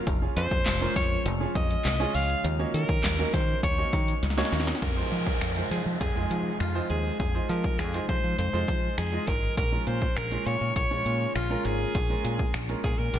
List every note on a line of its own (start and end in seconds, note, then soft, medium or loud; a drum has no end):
0.00 2.41 C#3 medium
0.07 0.26 F1 loud
0.07 2.42 F3 medium
0.07 2.42 G#3 medium
0.07 2.42 F4 loud
0.07 kick loud
0.07 closed hi-hat medium
0.22 0.66 C#4 medium
0.22 0.66 F4 medium
0.22 0.66 G#4 medium
0.36 0.46 F2 loud
0.36 0.92 C5 loud
0.36 closed hi-hat medium
0.51 0.61 F2 loud
0.51 kick medium
0.66 0.86 F1 loud
0.66 snare medium
0.66 clap loud
0.66 closed hi-hat medium
0.81 1.25 C#4 medium
0.81 1.25 F4 medium
0.81 1.25 A#4 medium
0.96 1.15 F2 loud
0.96 1.24 C#5 loud
0.96 kick medium
0.96 closed hi-hat medium
1.26 1.45 F1 loud
1.26 closed hi-hat loud
1.40 1.85 C#4 medium
1.40 1.85 F4 medium
1.40 1.85 G#4 medium
1.55 1.75 F2 loud
1.55 2.16 D#5 loud
1.55 kick loud
1.55 closed hi-hat medium
1.70 closed hi-hat soft
1.85 2.04 C2 medium
1.85 snare medium
1.85 clap loud
1.85 closed hi-hat loud
2.00 2.44 C#4 medium
2.00 2.44 F4 medium
2.00 2.44 G#4 loud
2.15 2.34 C#2 medium
2.15 2.44 F5 loud
2.15 open hi-hat medium
2.30 closed hi-hat medium
2.44 2.64 D#2 loud
2.44 4.80 C#3 medium
2.44 4.80 F#3 medium
2.44 4.80 A#3 medium
2.44 4.80 D#4 loud
2.44 closed hi-hat medium
2.59 3.03 A#3 medium
2.59 3.03 C#4 medium
2.59 3.04 D#4 medium
2.59 3.04 F#4 medium
2.59 3.04 C#5 medium
2.74 2.84 D#3 loud
2.74 3.35 A#4 loud
2.74 closed hi-hat medium
2.89 2.99 D#3 medium
2.89 kick medium
3.04 3.23 D#2 loud
3.04 snare loud
3.04 clap loud
3.04 closed hi-hat medium
3.18 3.63 A#3 medium
3.18 3.63 C#4 medium
3.18 3.63 D#4 medium
3.18 3.63 F#4 medium
3.18 3.63 A#4 medium
3.34 3.53 D#3 loud
3.34 3.63 C5 loud
3.34 kick medium
3.34 closed hi-hat medium
3.63 3.83 D#2 loud
3.63 4.19 C#5 loud
3.63 kick medium
3.63 closed hi-hat medium
3.78 4.22 A#3 medium
3.78 4.22 C#4 medium
3.78 4.22 D#4 medium
3.78 4.22 F#4 medium
3.78 4.22 C#5 medium
3.93 4.12 D#3 loud
3.93 kick loud
3.93 closed hi-hat medium
4.08 closed hi-hat soft
4.23 4.42 C#2 medium
4.23 snare medium
4.23 closed hi-hat medium
4.30 snare medium
4.37 4.82 A#3 loud
4.37 4.82 C#4 medium
4.37 4.82 D#4 loud
4.37 4.82 F#4 loud
4.37 4.82 C#5 loud
4.37 snare medium
4.45 snare medium
4.52 4.72 D#2 medium
4.52 snare loud
4.52 open hi-hat medium
4.60 snare medium
4.67 snare loud
4.67 closed hi-hat medium
4.75 snare loud
4.82 5.01 F2 loud
4.82 9.53 C3 medium
4.82 9.53 F3 medium
4.82 13.19 G#3 medium
4.82 9.53 D#4 medium
4.82 5.67 A#4 medium
4.82 kick loud
4.82 closed hi-hat medium
4.82 downlifter medium
4.97 5.41 G#3 medium
4.97 5.41 D#4 medium
4.97 5.41 F4 medium
4.97 5.41 C5 medium
5.12 5.31 F3 loud
5.12 closed hi-hat medium
5.27 kick medium
5.41 5.61 F2 loud
5.41 finger snap loud
5.41 closed hi-hat medium
5.56 6.00 G#3 medium
5.56 6.01 D#4 medium
5.56 6.01 F4 medium
5.56 6.01 C5 medium
5.56 closed hi-hat medium
5.71 5.81 F3 medium
5.71 5.85 G#4 medium
5.71 closed hi-hat medium
5.86 5.96 F3 medium
6.01 6.10 F2 loud
6.01 6.56 G#4 medium
6.01 kick medium
6.01 closed hi-hat medium
6.16 6.25 F2 medium
6.16 6.60 G#3 medium
6.16 6.60 D#4 medium
6.16 6.60 F4 medium
6.16 6.60 G#4 medium
6.31 6.50 F3 medium
6.31 closed hi-hat medium
6.60 6.80 F2 medium
6.60 6.88 F4 medium
6.60 finger snap medium
6.60 closed hi-hat medium
6.75 7.19 G#3 medium
6.75 7.19 D#4 medium
6.75 7.19 F4 medium
6.75 7.19 C5 medium
6.90 7.09 D#2 medium
6.90 7.18 G#4 medium
6.90 closed hi-hat medium
7.20 7.39 F2 loud
7.20 7.51 G#4 medium
7.20 kick loud
7.20 closed hi-hat medium
7.34 7.79 G#3 medium
7.34 7.79 D#4 medium
7.34 7.79 F4 medium
7.34 7.79 C5 medium
7.49 7.81 F3 loud
7.49 7.81 A#4 loud
7.49 closed hi-hat medium
7.64 kick medium
7.79 7.98 F2 loud
7.79 8.08 G#4 medium
7.79 finger snap loud
7.79 closed hi-hat medium
7.94 8.38 G#3 medium
7.94 8.38 D#4 medium
7.94 8.38 F4 medium
7.94 8.38 C5 medium
7.94 closed hi-hat soft
8.09 8.19 F3 medium
8.09 8.36 C5 loud
8.09 kick medium
8.09 closed hi-hat medium
8.24 8.33 F3 loud
8.38 8.48 F2 loud
8.38 8.94 C5 loud
8.38 closed hi-hat medium
8.53 8.63 F2 medium
8.53 8.97 G#3 medium
8.53 8.98 D#4 medium
8.53 8.98 F4 medium
8.53 8.98 C5 medium
8.68 8.88 F3 medium
8.68 kick medium
8.68 closed hi-hat medium
8.98 9.17 F2 medium
8.98 9.29 G#4 medium
8.98 finger snap loud
8.98 closed hi-hat medium
9.13 9.57 G#3 medium
9.13 9.57 D#4 medium
9.13 9.57 F4 medium
9.13 9.57 D#5 medium
9.27 9.47 G#1 medium
9.27 9.57 A#4 loud
9.27 kick medium
9.27 closed hi-hat medium
9.57 9.77 A#1 loud
9.57 13.19 C#3 medium
9.57 13.19 A#3 medium
9.57 13.19 F4 medium
9.57 9.89 A#4 loud
9.57 kick loud
9.57 closed hi-hat medium
9.72 10.16 G#3 medium
9.72 10.16 C#4 medium
9.72 10.16 F4 medium
9.72 10.17 A#4 medium
9.87 10.06 A#2 medium
9.87 10.18 C5 loud
9.87 closed hi-hat medium
10.02 kick medium
10.17 10.36 A#1 loud
10.17 10.48 A#4 loud
10.17 finger snap loud
10.17 closed hi-hat medium
10.31 10.76 G#3 medium
10.31 10.76 C#4 medium
10.31 10.76 F4 medium
10.31 10.76 A#4 medium
10.31 closed hi-hat soft
10.46 10.56 A#2 loud
10.46 10.76 C#5 loud
10.46 closed hi-hat medium
10.61 10.71 A#2 loud
10.76 10.86 A#1 loud
10.76 11.32 C#5 loud
10.76 kick medium
10.76 closed hi-hat medium
10.91 11.01 A#1 medium
10.91 11.35 G#3 medium
10.91 11.35 C#4 medium
10.91 11.35 F4 medium
10.91 11.35 C#5 loud
11.06 11.25 A#2 medium
11.06 closed hi-hat medium
11.36 11.55 A#1 medium
11.36 11.67 F4 loud
11.36 finger snap loud
11.36 closed hi-hat medium
11.50 11.94 G#3 medium
11.50 11.95 C#4 medium
11.50 11.95 F4 medium
11.50 11.95 A#4 medium
11.65 11.85 G#1 medium
11.65 12.57 G#4 loud
11.65 closed hi-hat medium
11.95 12.14 A#1 loud
11.95 kick loud
11.95 closed hi-hat medium
11.95 riser medium
12.10 12.54 G#3 medium
12.10 12.54 C#4 medium
12.10 12.54 F4 medium
12.10 12.54 A#4 medium
12.25 12.44 A#2 loud
12.25 closed hi-hat medium
12.39 kick medium
12.54 12.74 A#1 loud
12.54 finger snap loud
12.54 closed hi-hat medium
12.69 13.13 G#3 medium
12.69 13.13 C#4 medium
12.69 13.13 F4 medium
12.69 13.14 A#4 medium
12.69 closed hi-hat medium
12.84 12.94 A#2 loud
12.84 13.00 G#4 loud
12.84 kick medium
12.84 closed hi-hat medium
12.99 13.09 A#2 loud
12.99 13.19 A#4 loud
13.14 13.19 A#1 loud
13.14 closed hi-hat medium